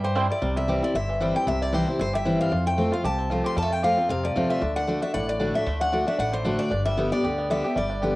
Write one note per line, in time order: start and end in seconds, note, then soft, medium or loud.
0.00 0.26 G2 medium
0.00 0.14 E3 medium
0.00 0.15 G3 medium
0.00 0.40 G4 medium
0.04 0.31 C5 medium
0.15 0.41 G3 medium
0.15 0.26 C4 medium
0.15 0.26 E4 medium
0.15 0.26 C5 medium
0.15 0.26 G5 loud
0.30 0.42 E4 medium
0.30 0.55 D5 medium
0.42 0.78 C2 medium
0.42 0.92 C3 medium
0.42 0.80 G3 medium
0.56 0.92 E4 medium
0.56 0.84 E5 medium
0.68 0.82 E3 medium
0.68 0.82 G3 medium
0.68 0.82 C4 medium
0.68 0.81 E4 medium
0.68 1.06 G4 medium
0.82 1.47 C4 medium
0.82 0.95 C4 soft
0.82 0.94 E4 medium
0.82 0.94 D5 medium
0.94 1.31 G1 medium
0.94 1.45 G2 medium
0.94 1.33 E4 medium
0.94 1.35 E5 loud
1.09 1.45 E3 medium
1.20 1.34 E3 medium
1.20 1.35 G3 medium
1.20 1.59 G3 medium
1.20 1.35 C4 loud
1.20 1.34 E4 loud
1.35 1.47 C4 soft
1.35 1.46 E4 medium
1.35 1.61 E4 medium
1.35 1.48 G5 medium
1.47 1.83 C2 medium
1.47 1.97 C3 medium
1.47 1.87 C4 medium
1.47 1.62 E5 loud
1.62 1.97 E4 medium
1.62 1.74 D5 medium
1.73 1.87 E3 medium
1.73 1.87 G3 medium
1.73 1.87 C4 medium
1.73 1.86 E4 loud
1.73 2.11 G4 medium
1.73 2.00 C5 medium
1.87 2.78 C4 medium
1.87 2.00 C4 medium
1.87 1.99 E4 medium
1.99 2.36 G1 medium
1.99 2.50 G2 medium
1.99 2.24 E4 medium
1.99 2.15 C5 loud
2.13 2.49 G4 medium
2.13 2.39 E5 loud
2.25 2.51 E3 medium
2.25 2.51 G3 medium
2.25 2.51 C4 medium
2.25 2.52 E4 medium
2.25 2.51 E4 loud
2.40 2.52 G3 medium
2.40 2.66 F5 medium
2.51 2.88 F2 medium
2.51 3.02 F2 medium
2.51 2.90 F4 medium
2.66 3.07 A3 medium
2.66 2.93 G5 loud
2.77 2.92 F3 medium
2.77 2.92 A3 loud
2.77 3.16 C4 medium
2.77 2.92 C4 loud
2.77 2.91 F4 medium
2.92 3.05 C4 soft
2.92 3.04 F4 medium
2.92 3.28 F4 medium
2.92 3.04 F5 medium
3.04 3.41 C2 medium
3.04 3.55 C3 medium
3.04 3.42 G4 medium
3.04 3.43 A5 loud
3.18 3.54 C4 medium
3.30 3.56 F3 medium
3.30 3.56 A3 medium
3.30 3.56 C4 loud
3.30 3.68 F4 medium
3.30 3.57 F4 medium
3.44 3.80 G4 medium
3.44 3.57 C6 loud
3.56 3.93 F2 loud
3.56 4.07 F2 medium
3.56 3.62 G3 medium
3.56 3.72 A5 loud
3.62 3.83 A3 medium
3.70 4.07 F4 medium
3.70 3.84 G5 loud
3.83 3.97 F3 medium
3.83 3.97 A3 medium
3.83 3.97 C4 loud
3.83 3.96 F4 loud
3.83 4.21 G4 medium
3.83 4.09 F5 loud
3.97 4.33 C4 medium
3.97 4.10 C4 soft
3.97 4.09 F4 medium
4.09 4.32 F2 medium
4.09 4.59 C3 medium
4.09 4.47 F4 medium
4.09 4.25 F5 loud
4.23 4.59 F3 medium
4.23 4.51 D5 medium
4.35 4.58 E2 medium
4.35 4.61 F3 medium
4.35 5.54 A3 medium
4.35 4.61 A3 medium
4.35 4.61 C4 loud
4.35 4.61 F4 loud
4.50 4.62 F4 medium
4.50 4.76 E5 loud
4.61 4.98 D2 medium
4.61 4.86 D3 medium
4.61 4.76 D4 medium
4.76 4.88 D4 medium
4.76 5.02 F#5 loud
4.87 5.02 D3 medium
4.87 5.02 A3 medium
4.87 5.02 D4 medium
4.87 5.01 F#4 loud
5.02 5.14 D4 medium
5.02 5.14 F#4 medium
5.02 5.14 E5 medium
5.14 5.51 A1 medium
5.14 5.64 A2 medium
5.14 5.28 D4 medium
5.14 5.29 F#5 loud
5.29 5.40 D4 medium
5.29 5.53 D5 medium
5.40 5.54 D3 medium
5.40 5.54 A3 medium
5.40 5.54 D4 medium
5.40 5.80 D4 medium
5.40 5.53 F#4 loud
5.54 5.66 A3 medium
5.54 5.67 D4 soft
5.54 5.66 F#4 medium
5.54 5.81 E5 medium
5.67 6.03 D2 medium
5.67 5.91 D3 medium
5.67 6.05 A3 medium
5.81 5.93 D4 medium
5.81 6.07 F#5 loud
5.92 6.07 D3 medium
5.92 6.07 A3 medium
5.92 6.07 D4 medium
5.92 6.05 F#4 medium
6.07 6.19 D4 medium
6.07 6.19 D4 soft
6.07 6.18 F#4 medium
6.07 6.19 E5 medium
6.19 6.55 A1 medium
6.19 6.69 A2 medium
6.19 6.59 D4 medium
6.19 6.34 F#5 loud
6.33 6.69 D3 medium
6.33 6.61 C5 medium
6.45 6.70 D3 loud
6.45 6.70 A3 medium
6.45 6.72 A3 medium
6.45 6.71 D4 loud
6.45 6.71 F#4 loud
6.59 6.71 D4 medium
6.59 6.84 D5 medium
6.71 7.08 G1 medium
6.71 7.22 G2 medium
6.71 7.09 D4 medium
6.86 7.75 G3 medium
6.86 7.12 E5 loud
6.97 7.11 D3 medium
6.97 7.12 G3 medium
6.97 7.35 B3 medium
6.97 7.12 B3 medium
6.97 7.11 G4 medium
7.12 7.24 B3 soft
7.12 7.48 D4 medium
7.12 7.23 G4 medium
7.12 7.50 D5 medium
7.23 7.60 D2 medium
7.23 7.49 D3 medium
7.23 7.64 G4 medium
7.38 7.74 B3 medium
7.50 7.64 D3 medium
7.50 7.64 G3 medium
7.50 7.64 B3 loud
7.50 7.88 D4 medium
7.50 7.63 G4 loud
7.50 7.77 E5 loud
7.64 7.77 B3 soft
7.64 8.01 G4 medium
7.64 7.76 G4 medium
7.76 8.12 G1 medium
7.76 8.16 G2 medium
7.76 8.16 G3 medium
7.76 8.16 D5 medium
7.90 8.16 D4 medium
8.02 8.16 D3 medium
8.02 8.16 G3 medium
8.02 8.16 B3 medium
8.02 8.16 G4 medium